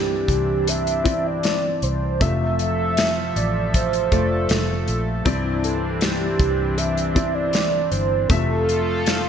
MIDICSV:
0, 0, Header, 1, 6, 480
1, 0, Start_track
1, 0, Key_signature, -1, "major"
1, 0, Tempo, 763359
1, 1390, Time_signature, 4, 2, 24, 8
1, 5841, End_track
2, 0, Start_track
2, 0, Title_t, "Soft synth lead"
2, 0, Program_c, 0, 80
2, 0, Note_on_c, 0, 67, 97
2, 431, Note_on_c, 0, 76, 109
2, 440, Note_off_c, 0, 67, 0
2, 798, Note_on_c, 0, 74, 112
2, 807, Note_off_c, 0, 76, 0
2, 1151, Note_on_c, 0, 72, 99
2, 1161, Note_off_c, 0, 74, 0
2, 1393, Note_on_c, 0, 76, 125
2, 1403, Note_off_c, 0, 72, 0
2, 2113, Note_off_c, 0, 76, 0
2, 2116, Note_on_c, 0, 74, 95
2, 2338, Note_off_c, 0, 74, 0
2, 2361, Note_on_c, 0, 72, 94
2, 2836, Note_on_c, 0, 69, 81
2, 2846, Note_off_c, 0, 72, 0
2, 3191, Note_off_c, 0, 69, 0
2, 3546, Note_on_c, 0, 69, 86
2, 3788, Note_on_c, 0, 67, 84
2, 3798, Note_off_c, 0, 69, 0
2, 4261, Note_on_c, 0, 76, 100
2, 4271, Note_off_c, 0, 67, 0
2, 4619, Note_on_c, 0, 74, 106
2, 4629, Note_off_c, 0, 76, 0
2, 4971, Note_off_c, 0, 74, 0
2, 4975, Note_on_c, 0, 72, 97
2, 5212, Note_on_c, 0, 69, 104
2, 5222, Note_off_c, 0, 72, 0
2, 5841, Note_off_c, 0, 69, 0
2, 5841, End_track
3, 0, Start_track
3, 0, Title_t, "Grand piano"
3, 0, Program_c, 1, 0
3, 0, Control_c, 1, 64, 127
3, 0, Note_on_c, 1, 43, 75
3, 0, Note_on_c, 1, 60, 79
3, 0, Note_on_c, 1, 64, 76
3, 0, Note_on_c, 1, 74, 84
3, 155, Note_off_c, 1, 43, 0
3, 371, Note_off_c, 1, 60, 0
3, 373, Note_off_c, 1, 64, 0
3, 376, Note_off_c, 1, 74, 0
3, 654, Note_on_c, 1, 60, 69
3, 656, Note_on_c, 1, 64, 59
3, 662, Note_on_c, 1, 74, 69
3, 1349, Note_off_c, 1, 60, 0
3, 1350, Note_off_c, 1, 64, 0
3, 1353, Note_off_c, 1, 74, 0
3, 1384, Note_on_c, 1, 57, 73
3, 1385, Note_on_c, 1, 48, 64
3, 1387, Note_on_c, 1, 65, 66
3, 1390, Note_on_c, 1, 76, 76
3, 1398, Control_c, 1, 64, 0
3, 1518, Control_c, 1, 64, 127
3, 2086, Note_off_c, 1, 48, 0
3, 2302, Note_off_c, 1, 57, 0
3, 2304, Note_off_c, 1, 65, 0
3, 2305, Note_off_c, 1, 76, 0
3, 2588, Note_on_c, 1, 57, 68
3, 2590, Note_on_c, 1, 65, 61
3, 2595, Note_on_c, 1, 74, 75
3, 3269, Note_off_c, 1, 57, 0
3, 3270, Note_off_c, 1, 65, 0
3, 3272, Note_off_c, 1, 74, 0
3, 3303, Note_on_c, 1, 60, 93
3, 3305, Note_on_c, 1, 43, 78
3, 3307, Note_on_c, 1, 64, 79
3, 3311, Note_on_c, 1, 74, 99
3, 3315, Control_c, 1, 64, 0
3, 3433, Control_c, 1, 64, 127
3, 3996, Note_off_c, 1, 43, 0
3, 4212, Note_off_c, 1, 60, 0
3, 4214, Note_off_c, 1, 64, 0
3, 4216, Note_off_c, 1, 74, 0
3, 4494, Note_on_c, 1, 60, 70
3, 4502, Note_on_c, 1, 64, 67
3, 4504, Note_on_c, 1, 74, 82
3, 5178, Note_off_c, 1, 60, 0
3, 5182, Note_off_c, 1, 64, 0
3, 5183, Note_off_c, 1, 74, 0
3, 5217, Note_on_c, 1, 57, 76
3, 5220, Note_on_c, 1, 65, 67
3, 5222, Note_on_c, 1, 48, 64
3, 5225, Control_c, 1, 64, 0
3, 5226, Note_on_c, 1, 76, 85
3, 5347, Control_c, 1, 64, 127
3, 5841, Note_off_c, 1, 48, 0
3, 5841, Note_off_c, 1, 57, 0
3, 5841, Note_off_c, 1, 65, 0
3, 5841, Note_off_c, 1, 76, 0
3, 5841, End_track
4, 0, Start_track
4, 0, Title_t, "Analog synth pad"
4, 0, Program_c, 2, 89
4, 0, Note_on_c, 2, 52, 70
4, 0, Note_on_c, 2, 60, 70
4, 0, Note_on_c, 2, 62, 79
4, 1368, Note_off_c, 2, 52, 0
4, 1368, Note_off_c, 2, 62, 0
4, 1369, Note_off_c, 2, 60, 0
4, 1387, Note_on_c, 2, 69, 86
4, 1388, Note_on_c, 2, 76, 65
4, 1390, Note_on_c, 2, 53, 74
4, 3285, Note_off_c, 2, 69, 0
4, 3286, Note_off_c, 2, 76, 0
4, 3287, Note_off_c, 2, 53, 0
4, 3301, Note_on_c, 2, 60, 68
4, 3303, Note_on_c, 2, 52, 74
4, 3303, Note_on_c, 2, 62, 87
4, 5196, Note_off_c, 2, 60, 0
4, 5197, Note_off_c, 2, 52, 0
4, 5197, Note_off_c, 2, 62, 0
4, 5215, Note_on_c, 2, 69, 85
4, 5216, Note_on_c, 2, 65, 74
4, 5218, Note_on_c, 2, 53, 75
4, 5841, Note_off_c, 2, 53, 0
4, 5841, Note_off_c, 2, 65, 0
4, 5841, Note_off_c, 2, 69, 0
4, 5841, End_track
5, 0, Start_track
5, 0, Title_t, "Fingered electric bass"
5, 0, Program_c, 3, 33
5, 0, Note_on_c, 3, 36, 83
5, 155, Note_off_c, 3, 36, 0
5, 178, Note_on_c, 3, 36, 80
5, 1122, Note_off_c, 3, 36, 0
5, 1148, Note_on_c, 3, 36, 84
5, 1373, Note_off_c, 3, 36, 0
5, 1389, Note_on_c, 3, 29, 102
5, 2088, Note_off_c, 3, 29, 0
5, 2113, Note_on_c, 3, 33, 93
5, 2566, Note_off_c, 3, 33, 0
5, 2593, Note_on_c, 3, 29, 85
5, 2814, Note_off_c, 3, 29, 0
5, 2829, Note_on_c, 3, 29, 93
5, 3051, Note_off_c, 3, 29, 0
5, 3067, Note_on_c, 3, 34, 92
5, 3289, Note_off_c, 3, 34, 0
5, 3307, Note_on_c, 3, 36, 106
5, 3997, Note_off_c, 3, 36, 0
5, 4022, Note_on_c, 3, 36, 95
5, 4953, Note_off_c, 3, 36, 0
5, 4976, Note_on_c, 3, 31, 92
5, 5200, Note_off_c, 3, 31, 0
5, 5221, Note_on_c, 3, 29, 95
5, 5841, Note_off_c, 3, 29, 0
5, 5841, End_track
6, 0, Start_track
6, 0, Title_t, "Drums"
6, 179, Note_on_c, 9, 36, 84
6, 184, Note_on_c, 9, 42, 66
6, 242, Note_off_c, 9, 36, 0
6, 247, Note_off_c, 9, 42, 0
6, 425, Note_on_c, 9, 42, 90
6, 487, Note_off_c, 9, 42, 0
6, 547, Note_on_c, 9, 42, 57
6, 610, Note_off_c, 9, 42, 0
6, 664, Note_on_c, 9, 36, 88
6, 665, Note_on_c, 9, 42, 82
6, 727, Note_off_c, 9, 36, 0
6, 727, Note_off_c, 9, 42, 0
6, 901, Note_on_c, 9, 42, 81
6, 913, Note_on_c, 9, 38, 97
6, 964, Note_off_c, 9, 42, 0
6, 976, Note_off_c, 9, 38, 0
6, 1147, Note_on_c, 9, 42, 58
6, 1210, Note_off_c, 9, 42, 0
6, 1389, Note_on_c, 9, 36, 109
6, 1389, Note_on_c, 9, 42, 90
6, 1452, Note_off_c, 9, 36, 0
6, 1452, Note_off_c, 9, 42, 0
6, 1630, Note_on_c, 9, 42, 70
6, 1693, Note_off_c, 9, 42, 0
6, 1869, Note_on_c, 9, 42, 98
6, 1877, Note_on_c, 9, 38, 109
6, 1932, Note_off_c, 9, 42, 0
6, 1940, Note_off_c, 9, 38, 0
6, 2115, Note_on_c, 9, 42, 62
6, 2178, Note_off_c, 9, 42, 0
6, 2352, Note_on_c, 9, 42, 89
6, 2354, Note_on_c, 9, 36, 89
6, 2415, Note_off_c, 9, 42, 0
6, 2417, Note_off_c, 9, 36, 0
6, 2472, Note_on_c, 9, 42, 54
6, 2535, Note_off_c, 9, 42, 0
6, 2590, Note_on_c, 9, 42, 78
6, 2591, Note_on_c, 9, 36, 87
6, 2652, Note_off_c, 9, 42, 0
6, 2654, Note_off_c, 9, 36, 0
6, 2824, Note_on_c, 9, 42, 86
6, 2836, Note_on_c, 9, 38, 102
6, 2887, Note_off_c, 9, 42, 0
6, 2898, Note_off_c, 9, 38, 0
6, 3066, Note_on_c, 9, 42, 63
6, 3129, Note_off_c, 9, 42, 0
6, 3305, Note_on_c, 9, 42, 91
6, 3306, Note_on_c, 9, 36, 109
6, 3368, Note_off_c, 9, 42, 0
6, 3369, Note_off_c, 9, 36, 0
6, 3546, Note_on_c, 9, 42, 67
6, 3609, Note_off_c, 9, 42, 0
6, 3779, Note_on_c, 9, 42, 94
6, 3787, Note_on_c, 9, 38, 112
6, 3842, Note_off_c, 9, 42, 0
6, 3850, Note_off_c, 9, 38, 0
6, 4021, Note_on_c, 9, 36, 91
6, 4023, Note_on_c, 9, 42, 67
6, 4084, Note_off_c, 9, 36, 0
6, 4086, Note_off_c, 9, 42, 0
6, 4262, Note_on_c, 9, 42, 86
6, 4325, Note_off_c, 9, 42, 0
6, 4386, Note_on_c, 9, 42, 54
6, 4449, Note_off_c, 9, 42, 0
6, 4503, Note_on_c, 9, 36, 89
6, 4503, Note_on_c, 9, 42, 83
6, 4565, Note_off_c, 9, 36, 0
6, 4566, Note_off_c, 9, 42, 0
6, 4735, Note_on_c, 9, 42, 86
6, 4747, Note_on_c, 9, 38, 101
6, 4798, Note_off_c, 9, 42, 0
6, 4810, Note_off_c, 9, 38, 0
6, 4978, Note_on_c, 9, 42, 60
6, 5041, Note_off_c, 9, 42, 0
6, 5217, Note_on_c, 9, 42, 91
6, 5218, Note_on_c, 9, 36, 117
6, 5280, Note_off_c, 9, 42, 0
6, 5281, Note_off_c, 9, 36, 0
6, 5463, Note_on_c, 9, 42, 66
6, 5526, Note_off_c, 9, 42, 0
6, 5699, Note_on_c, 9, 42, 95
6, 5707, Note_on_c, 9, 38, 112
6, 5762, Note_off_c, 9, 42, 0
6, 5770, Note_off_c, 9, 38, 0
6, 5841, End_track
0, 0, End_of_file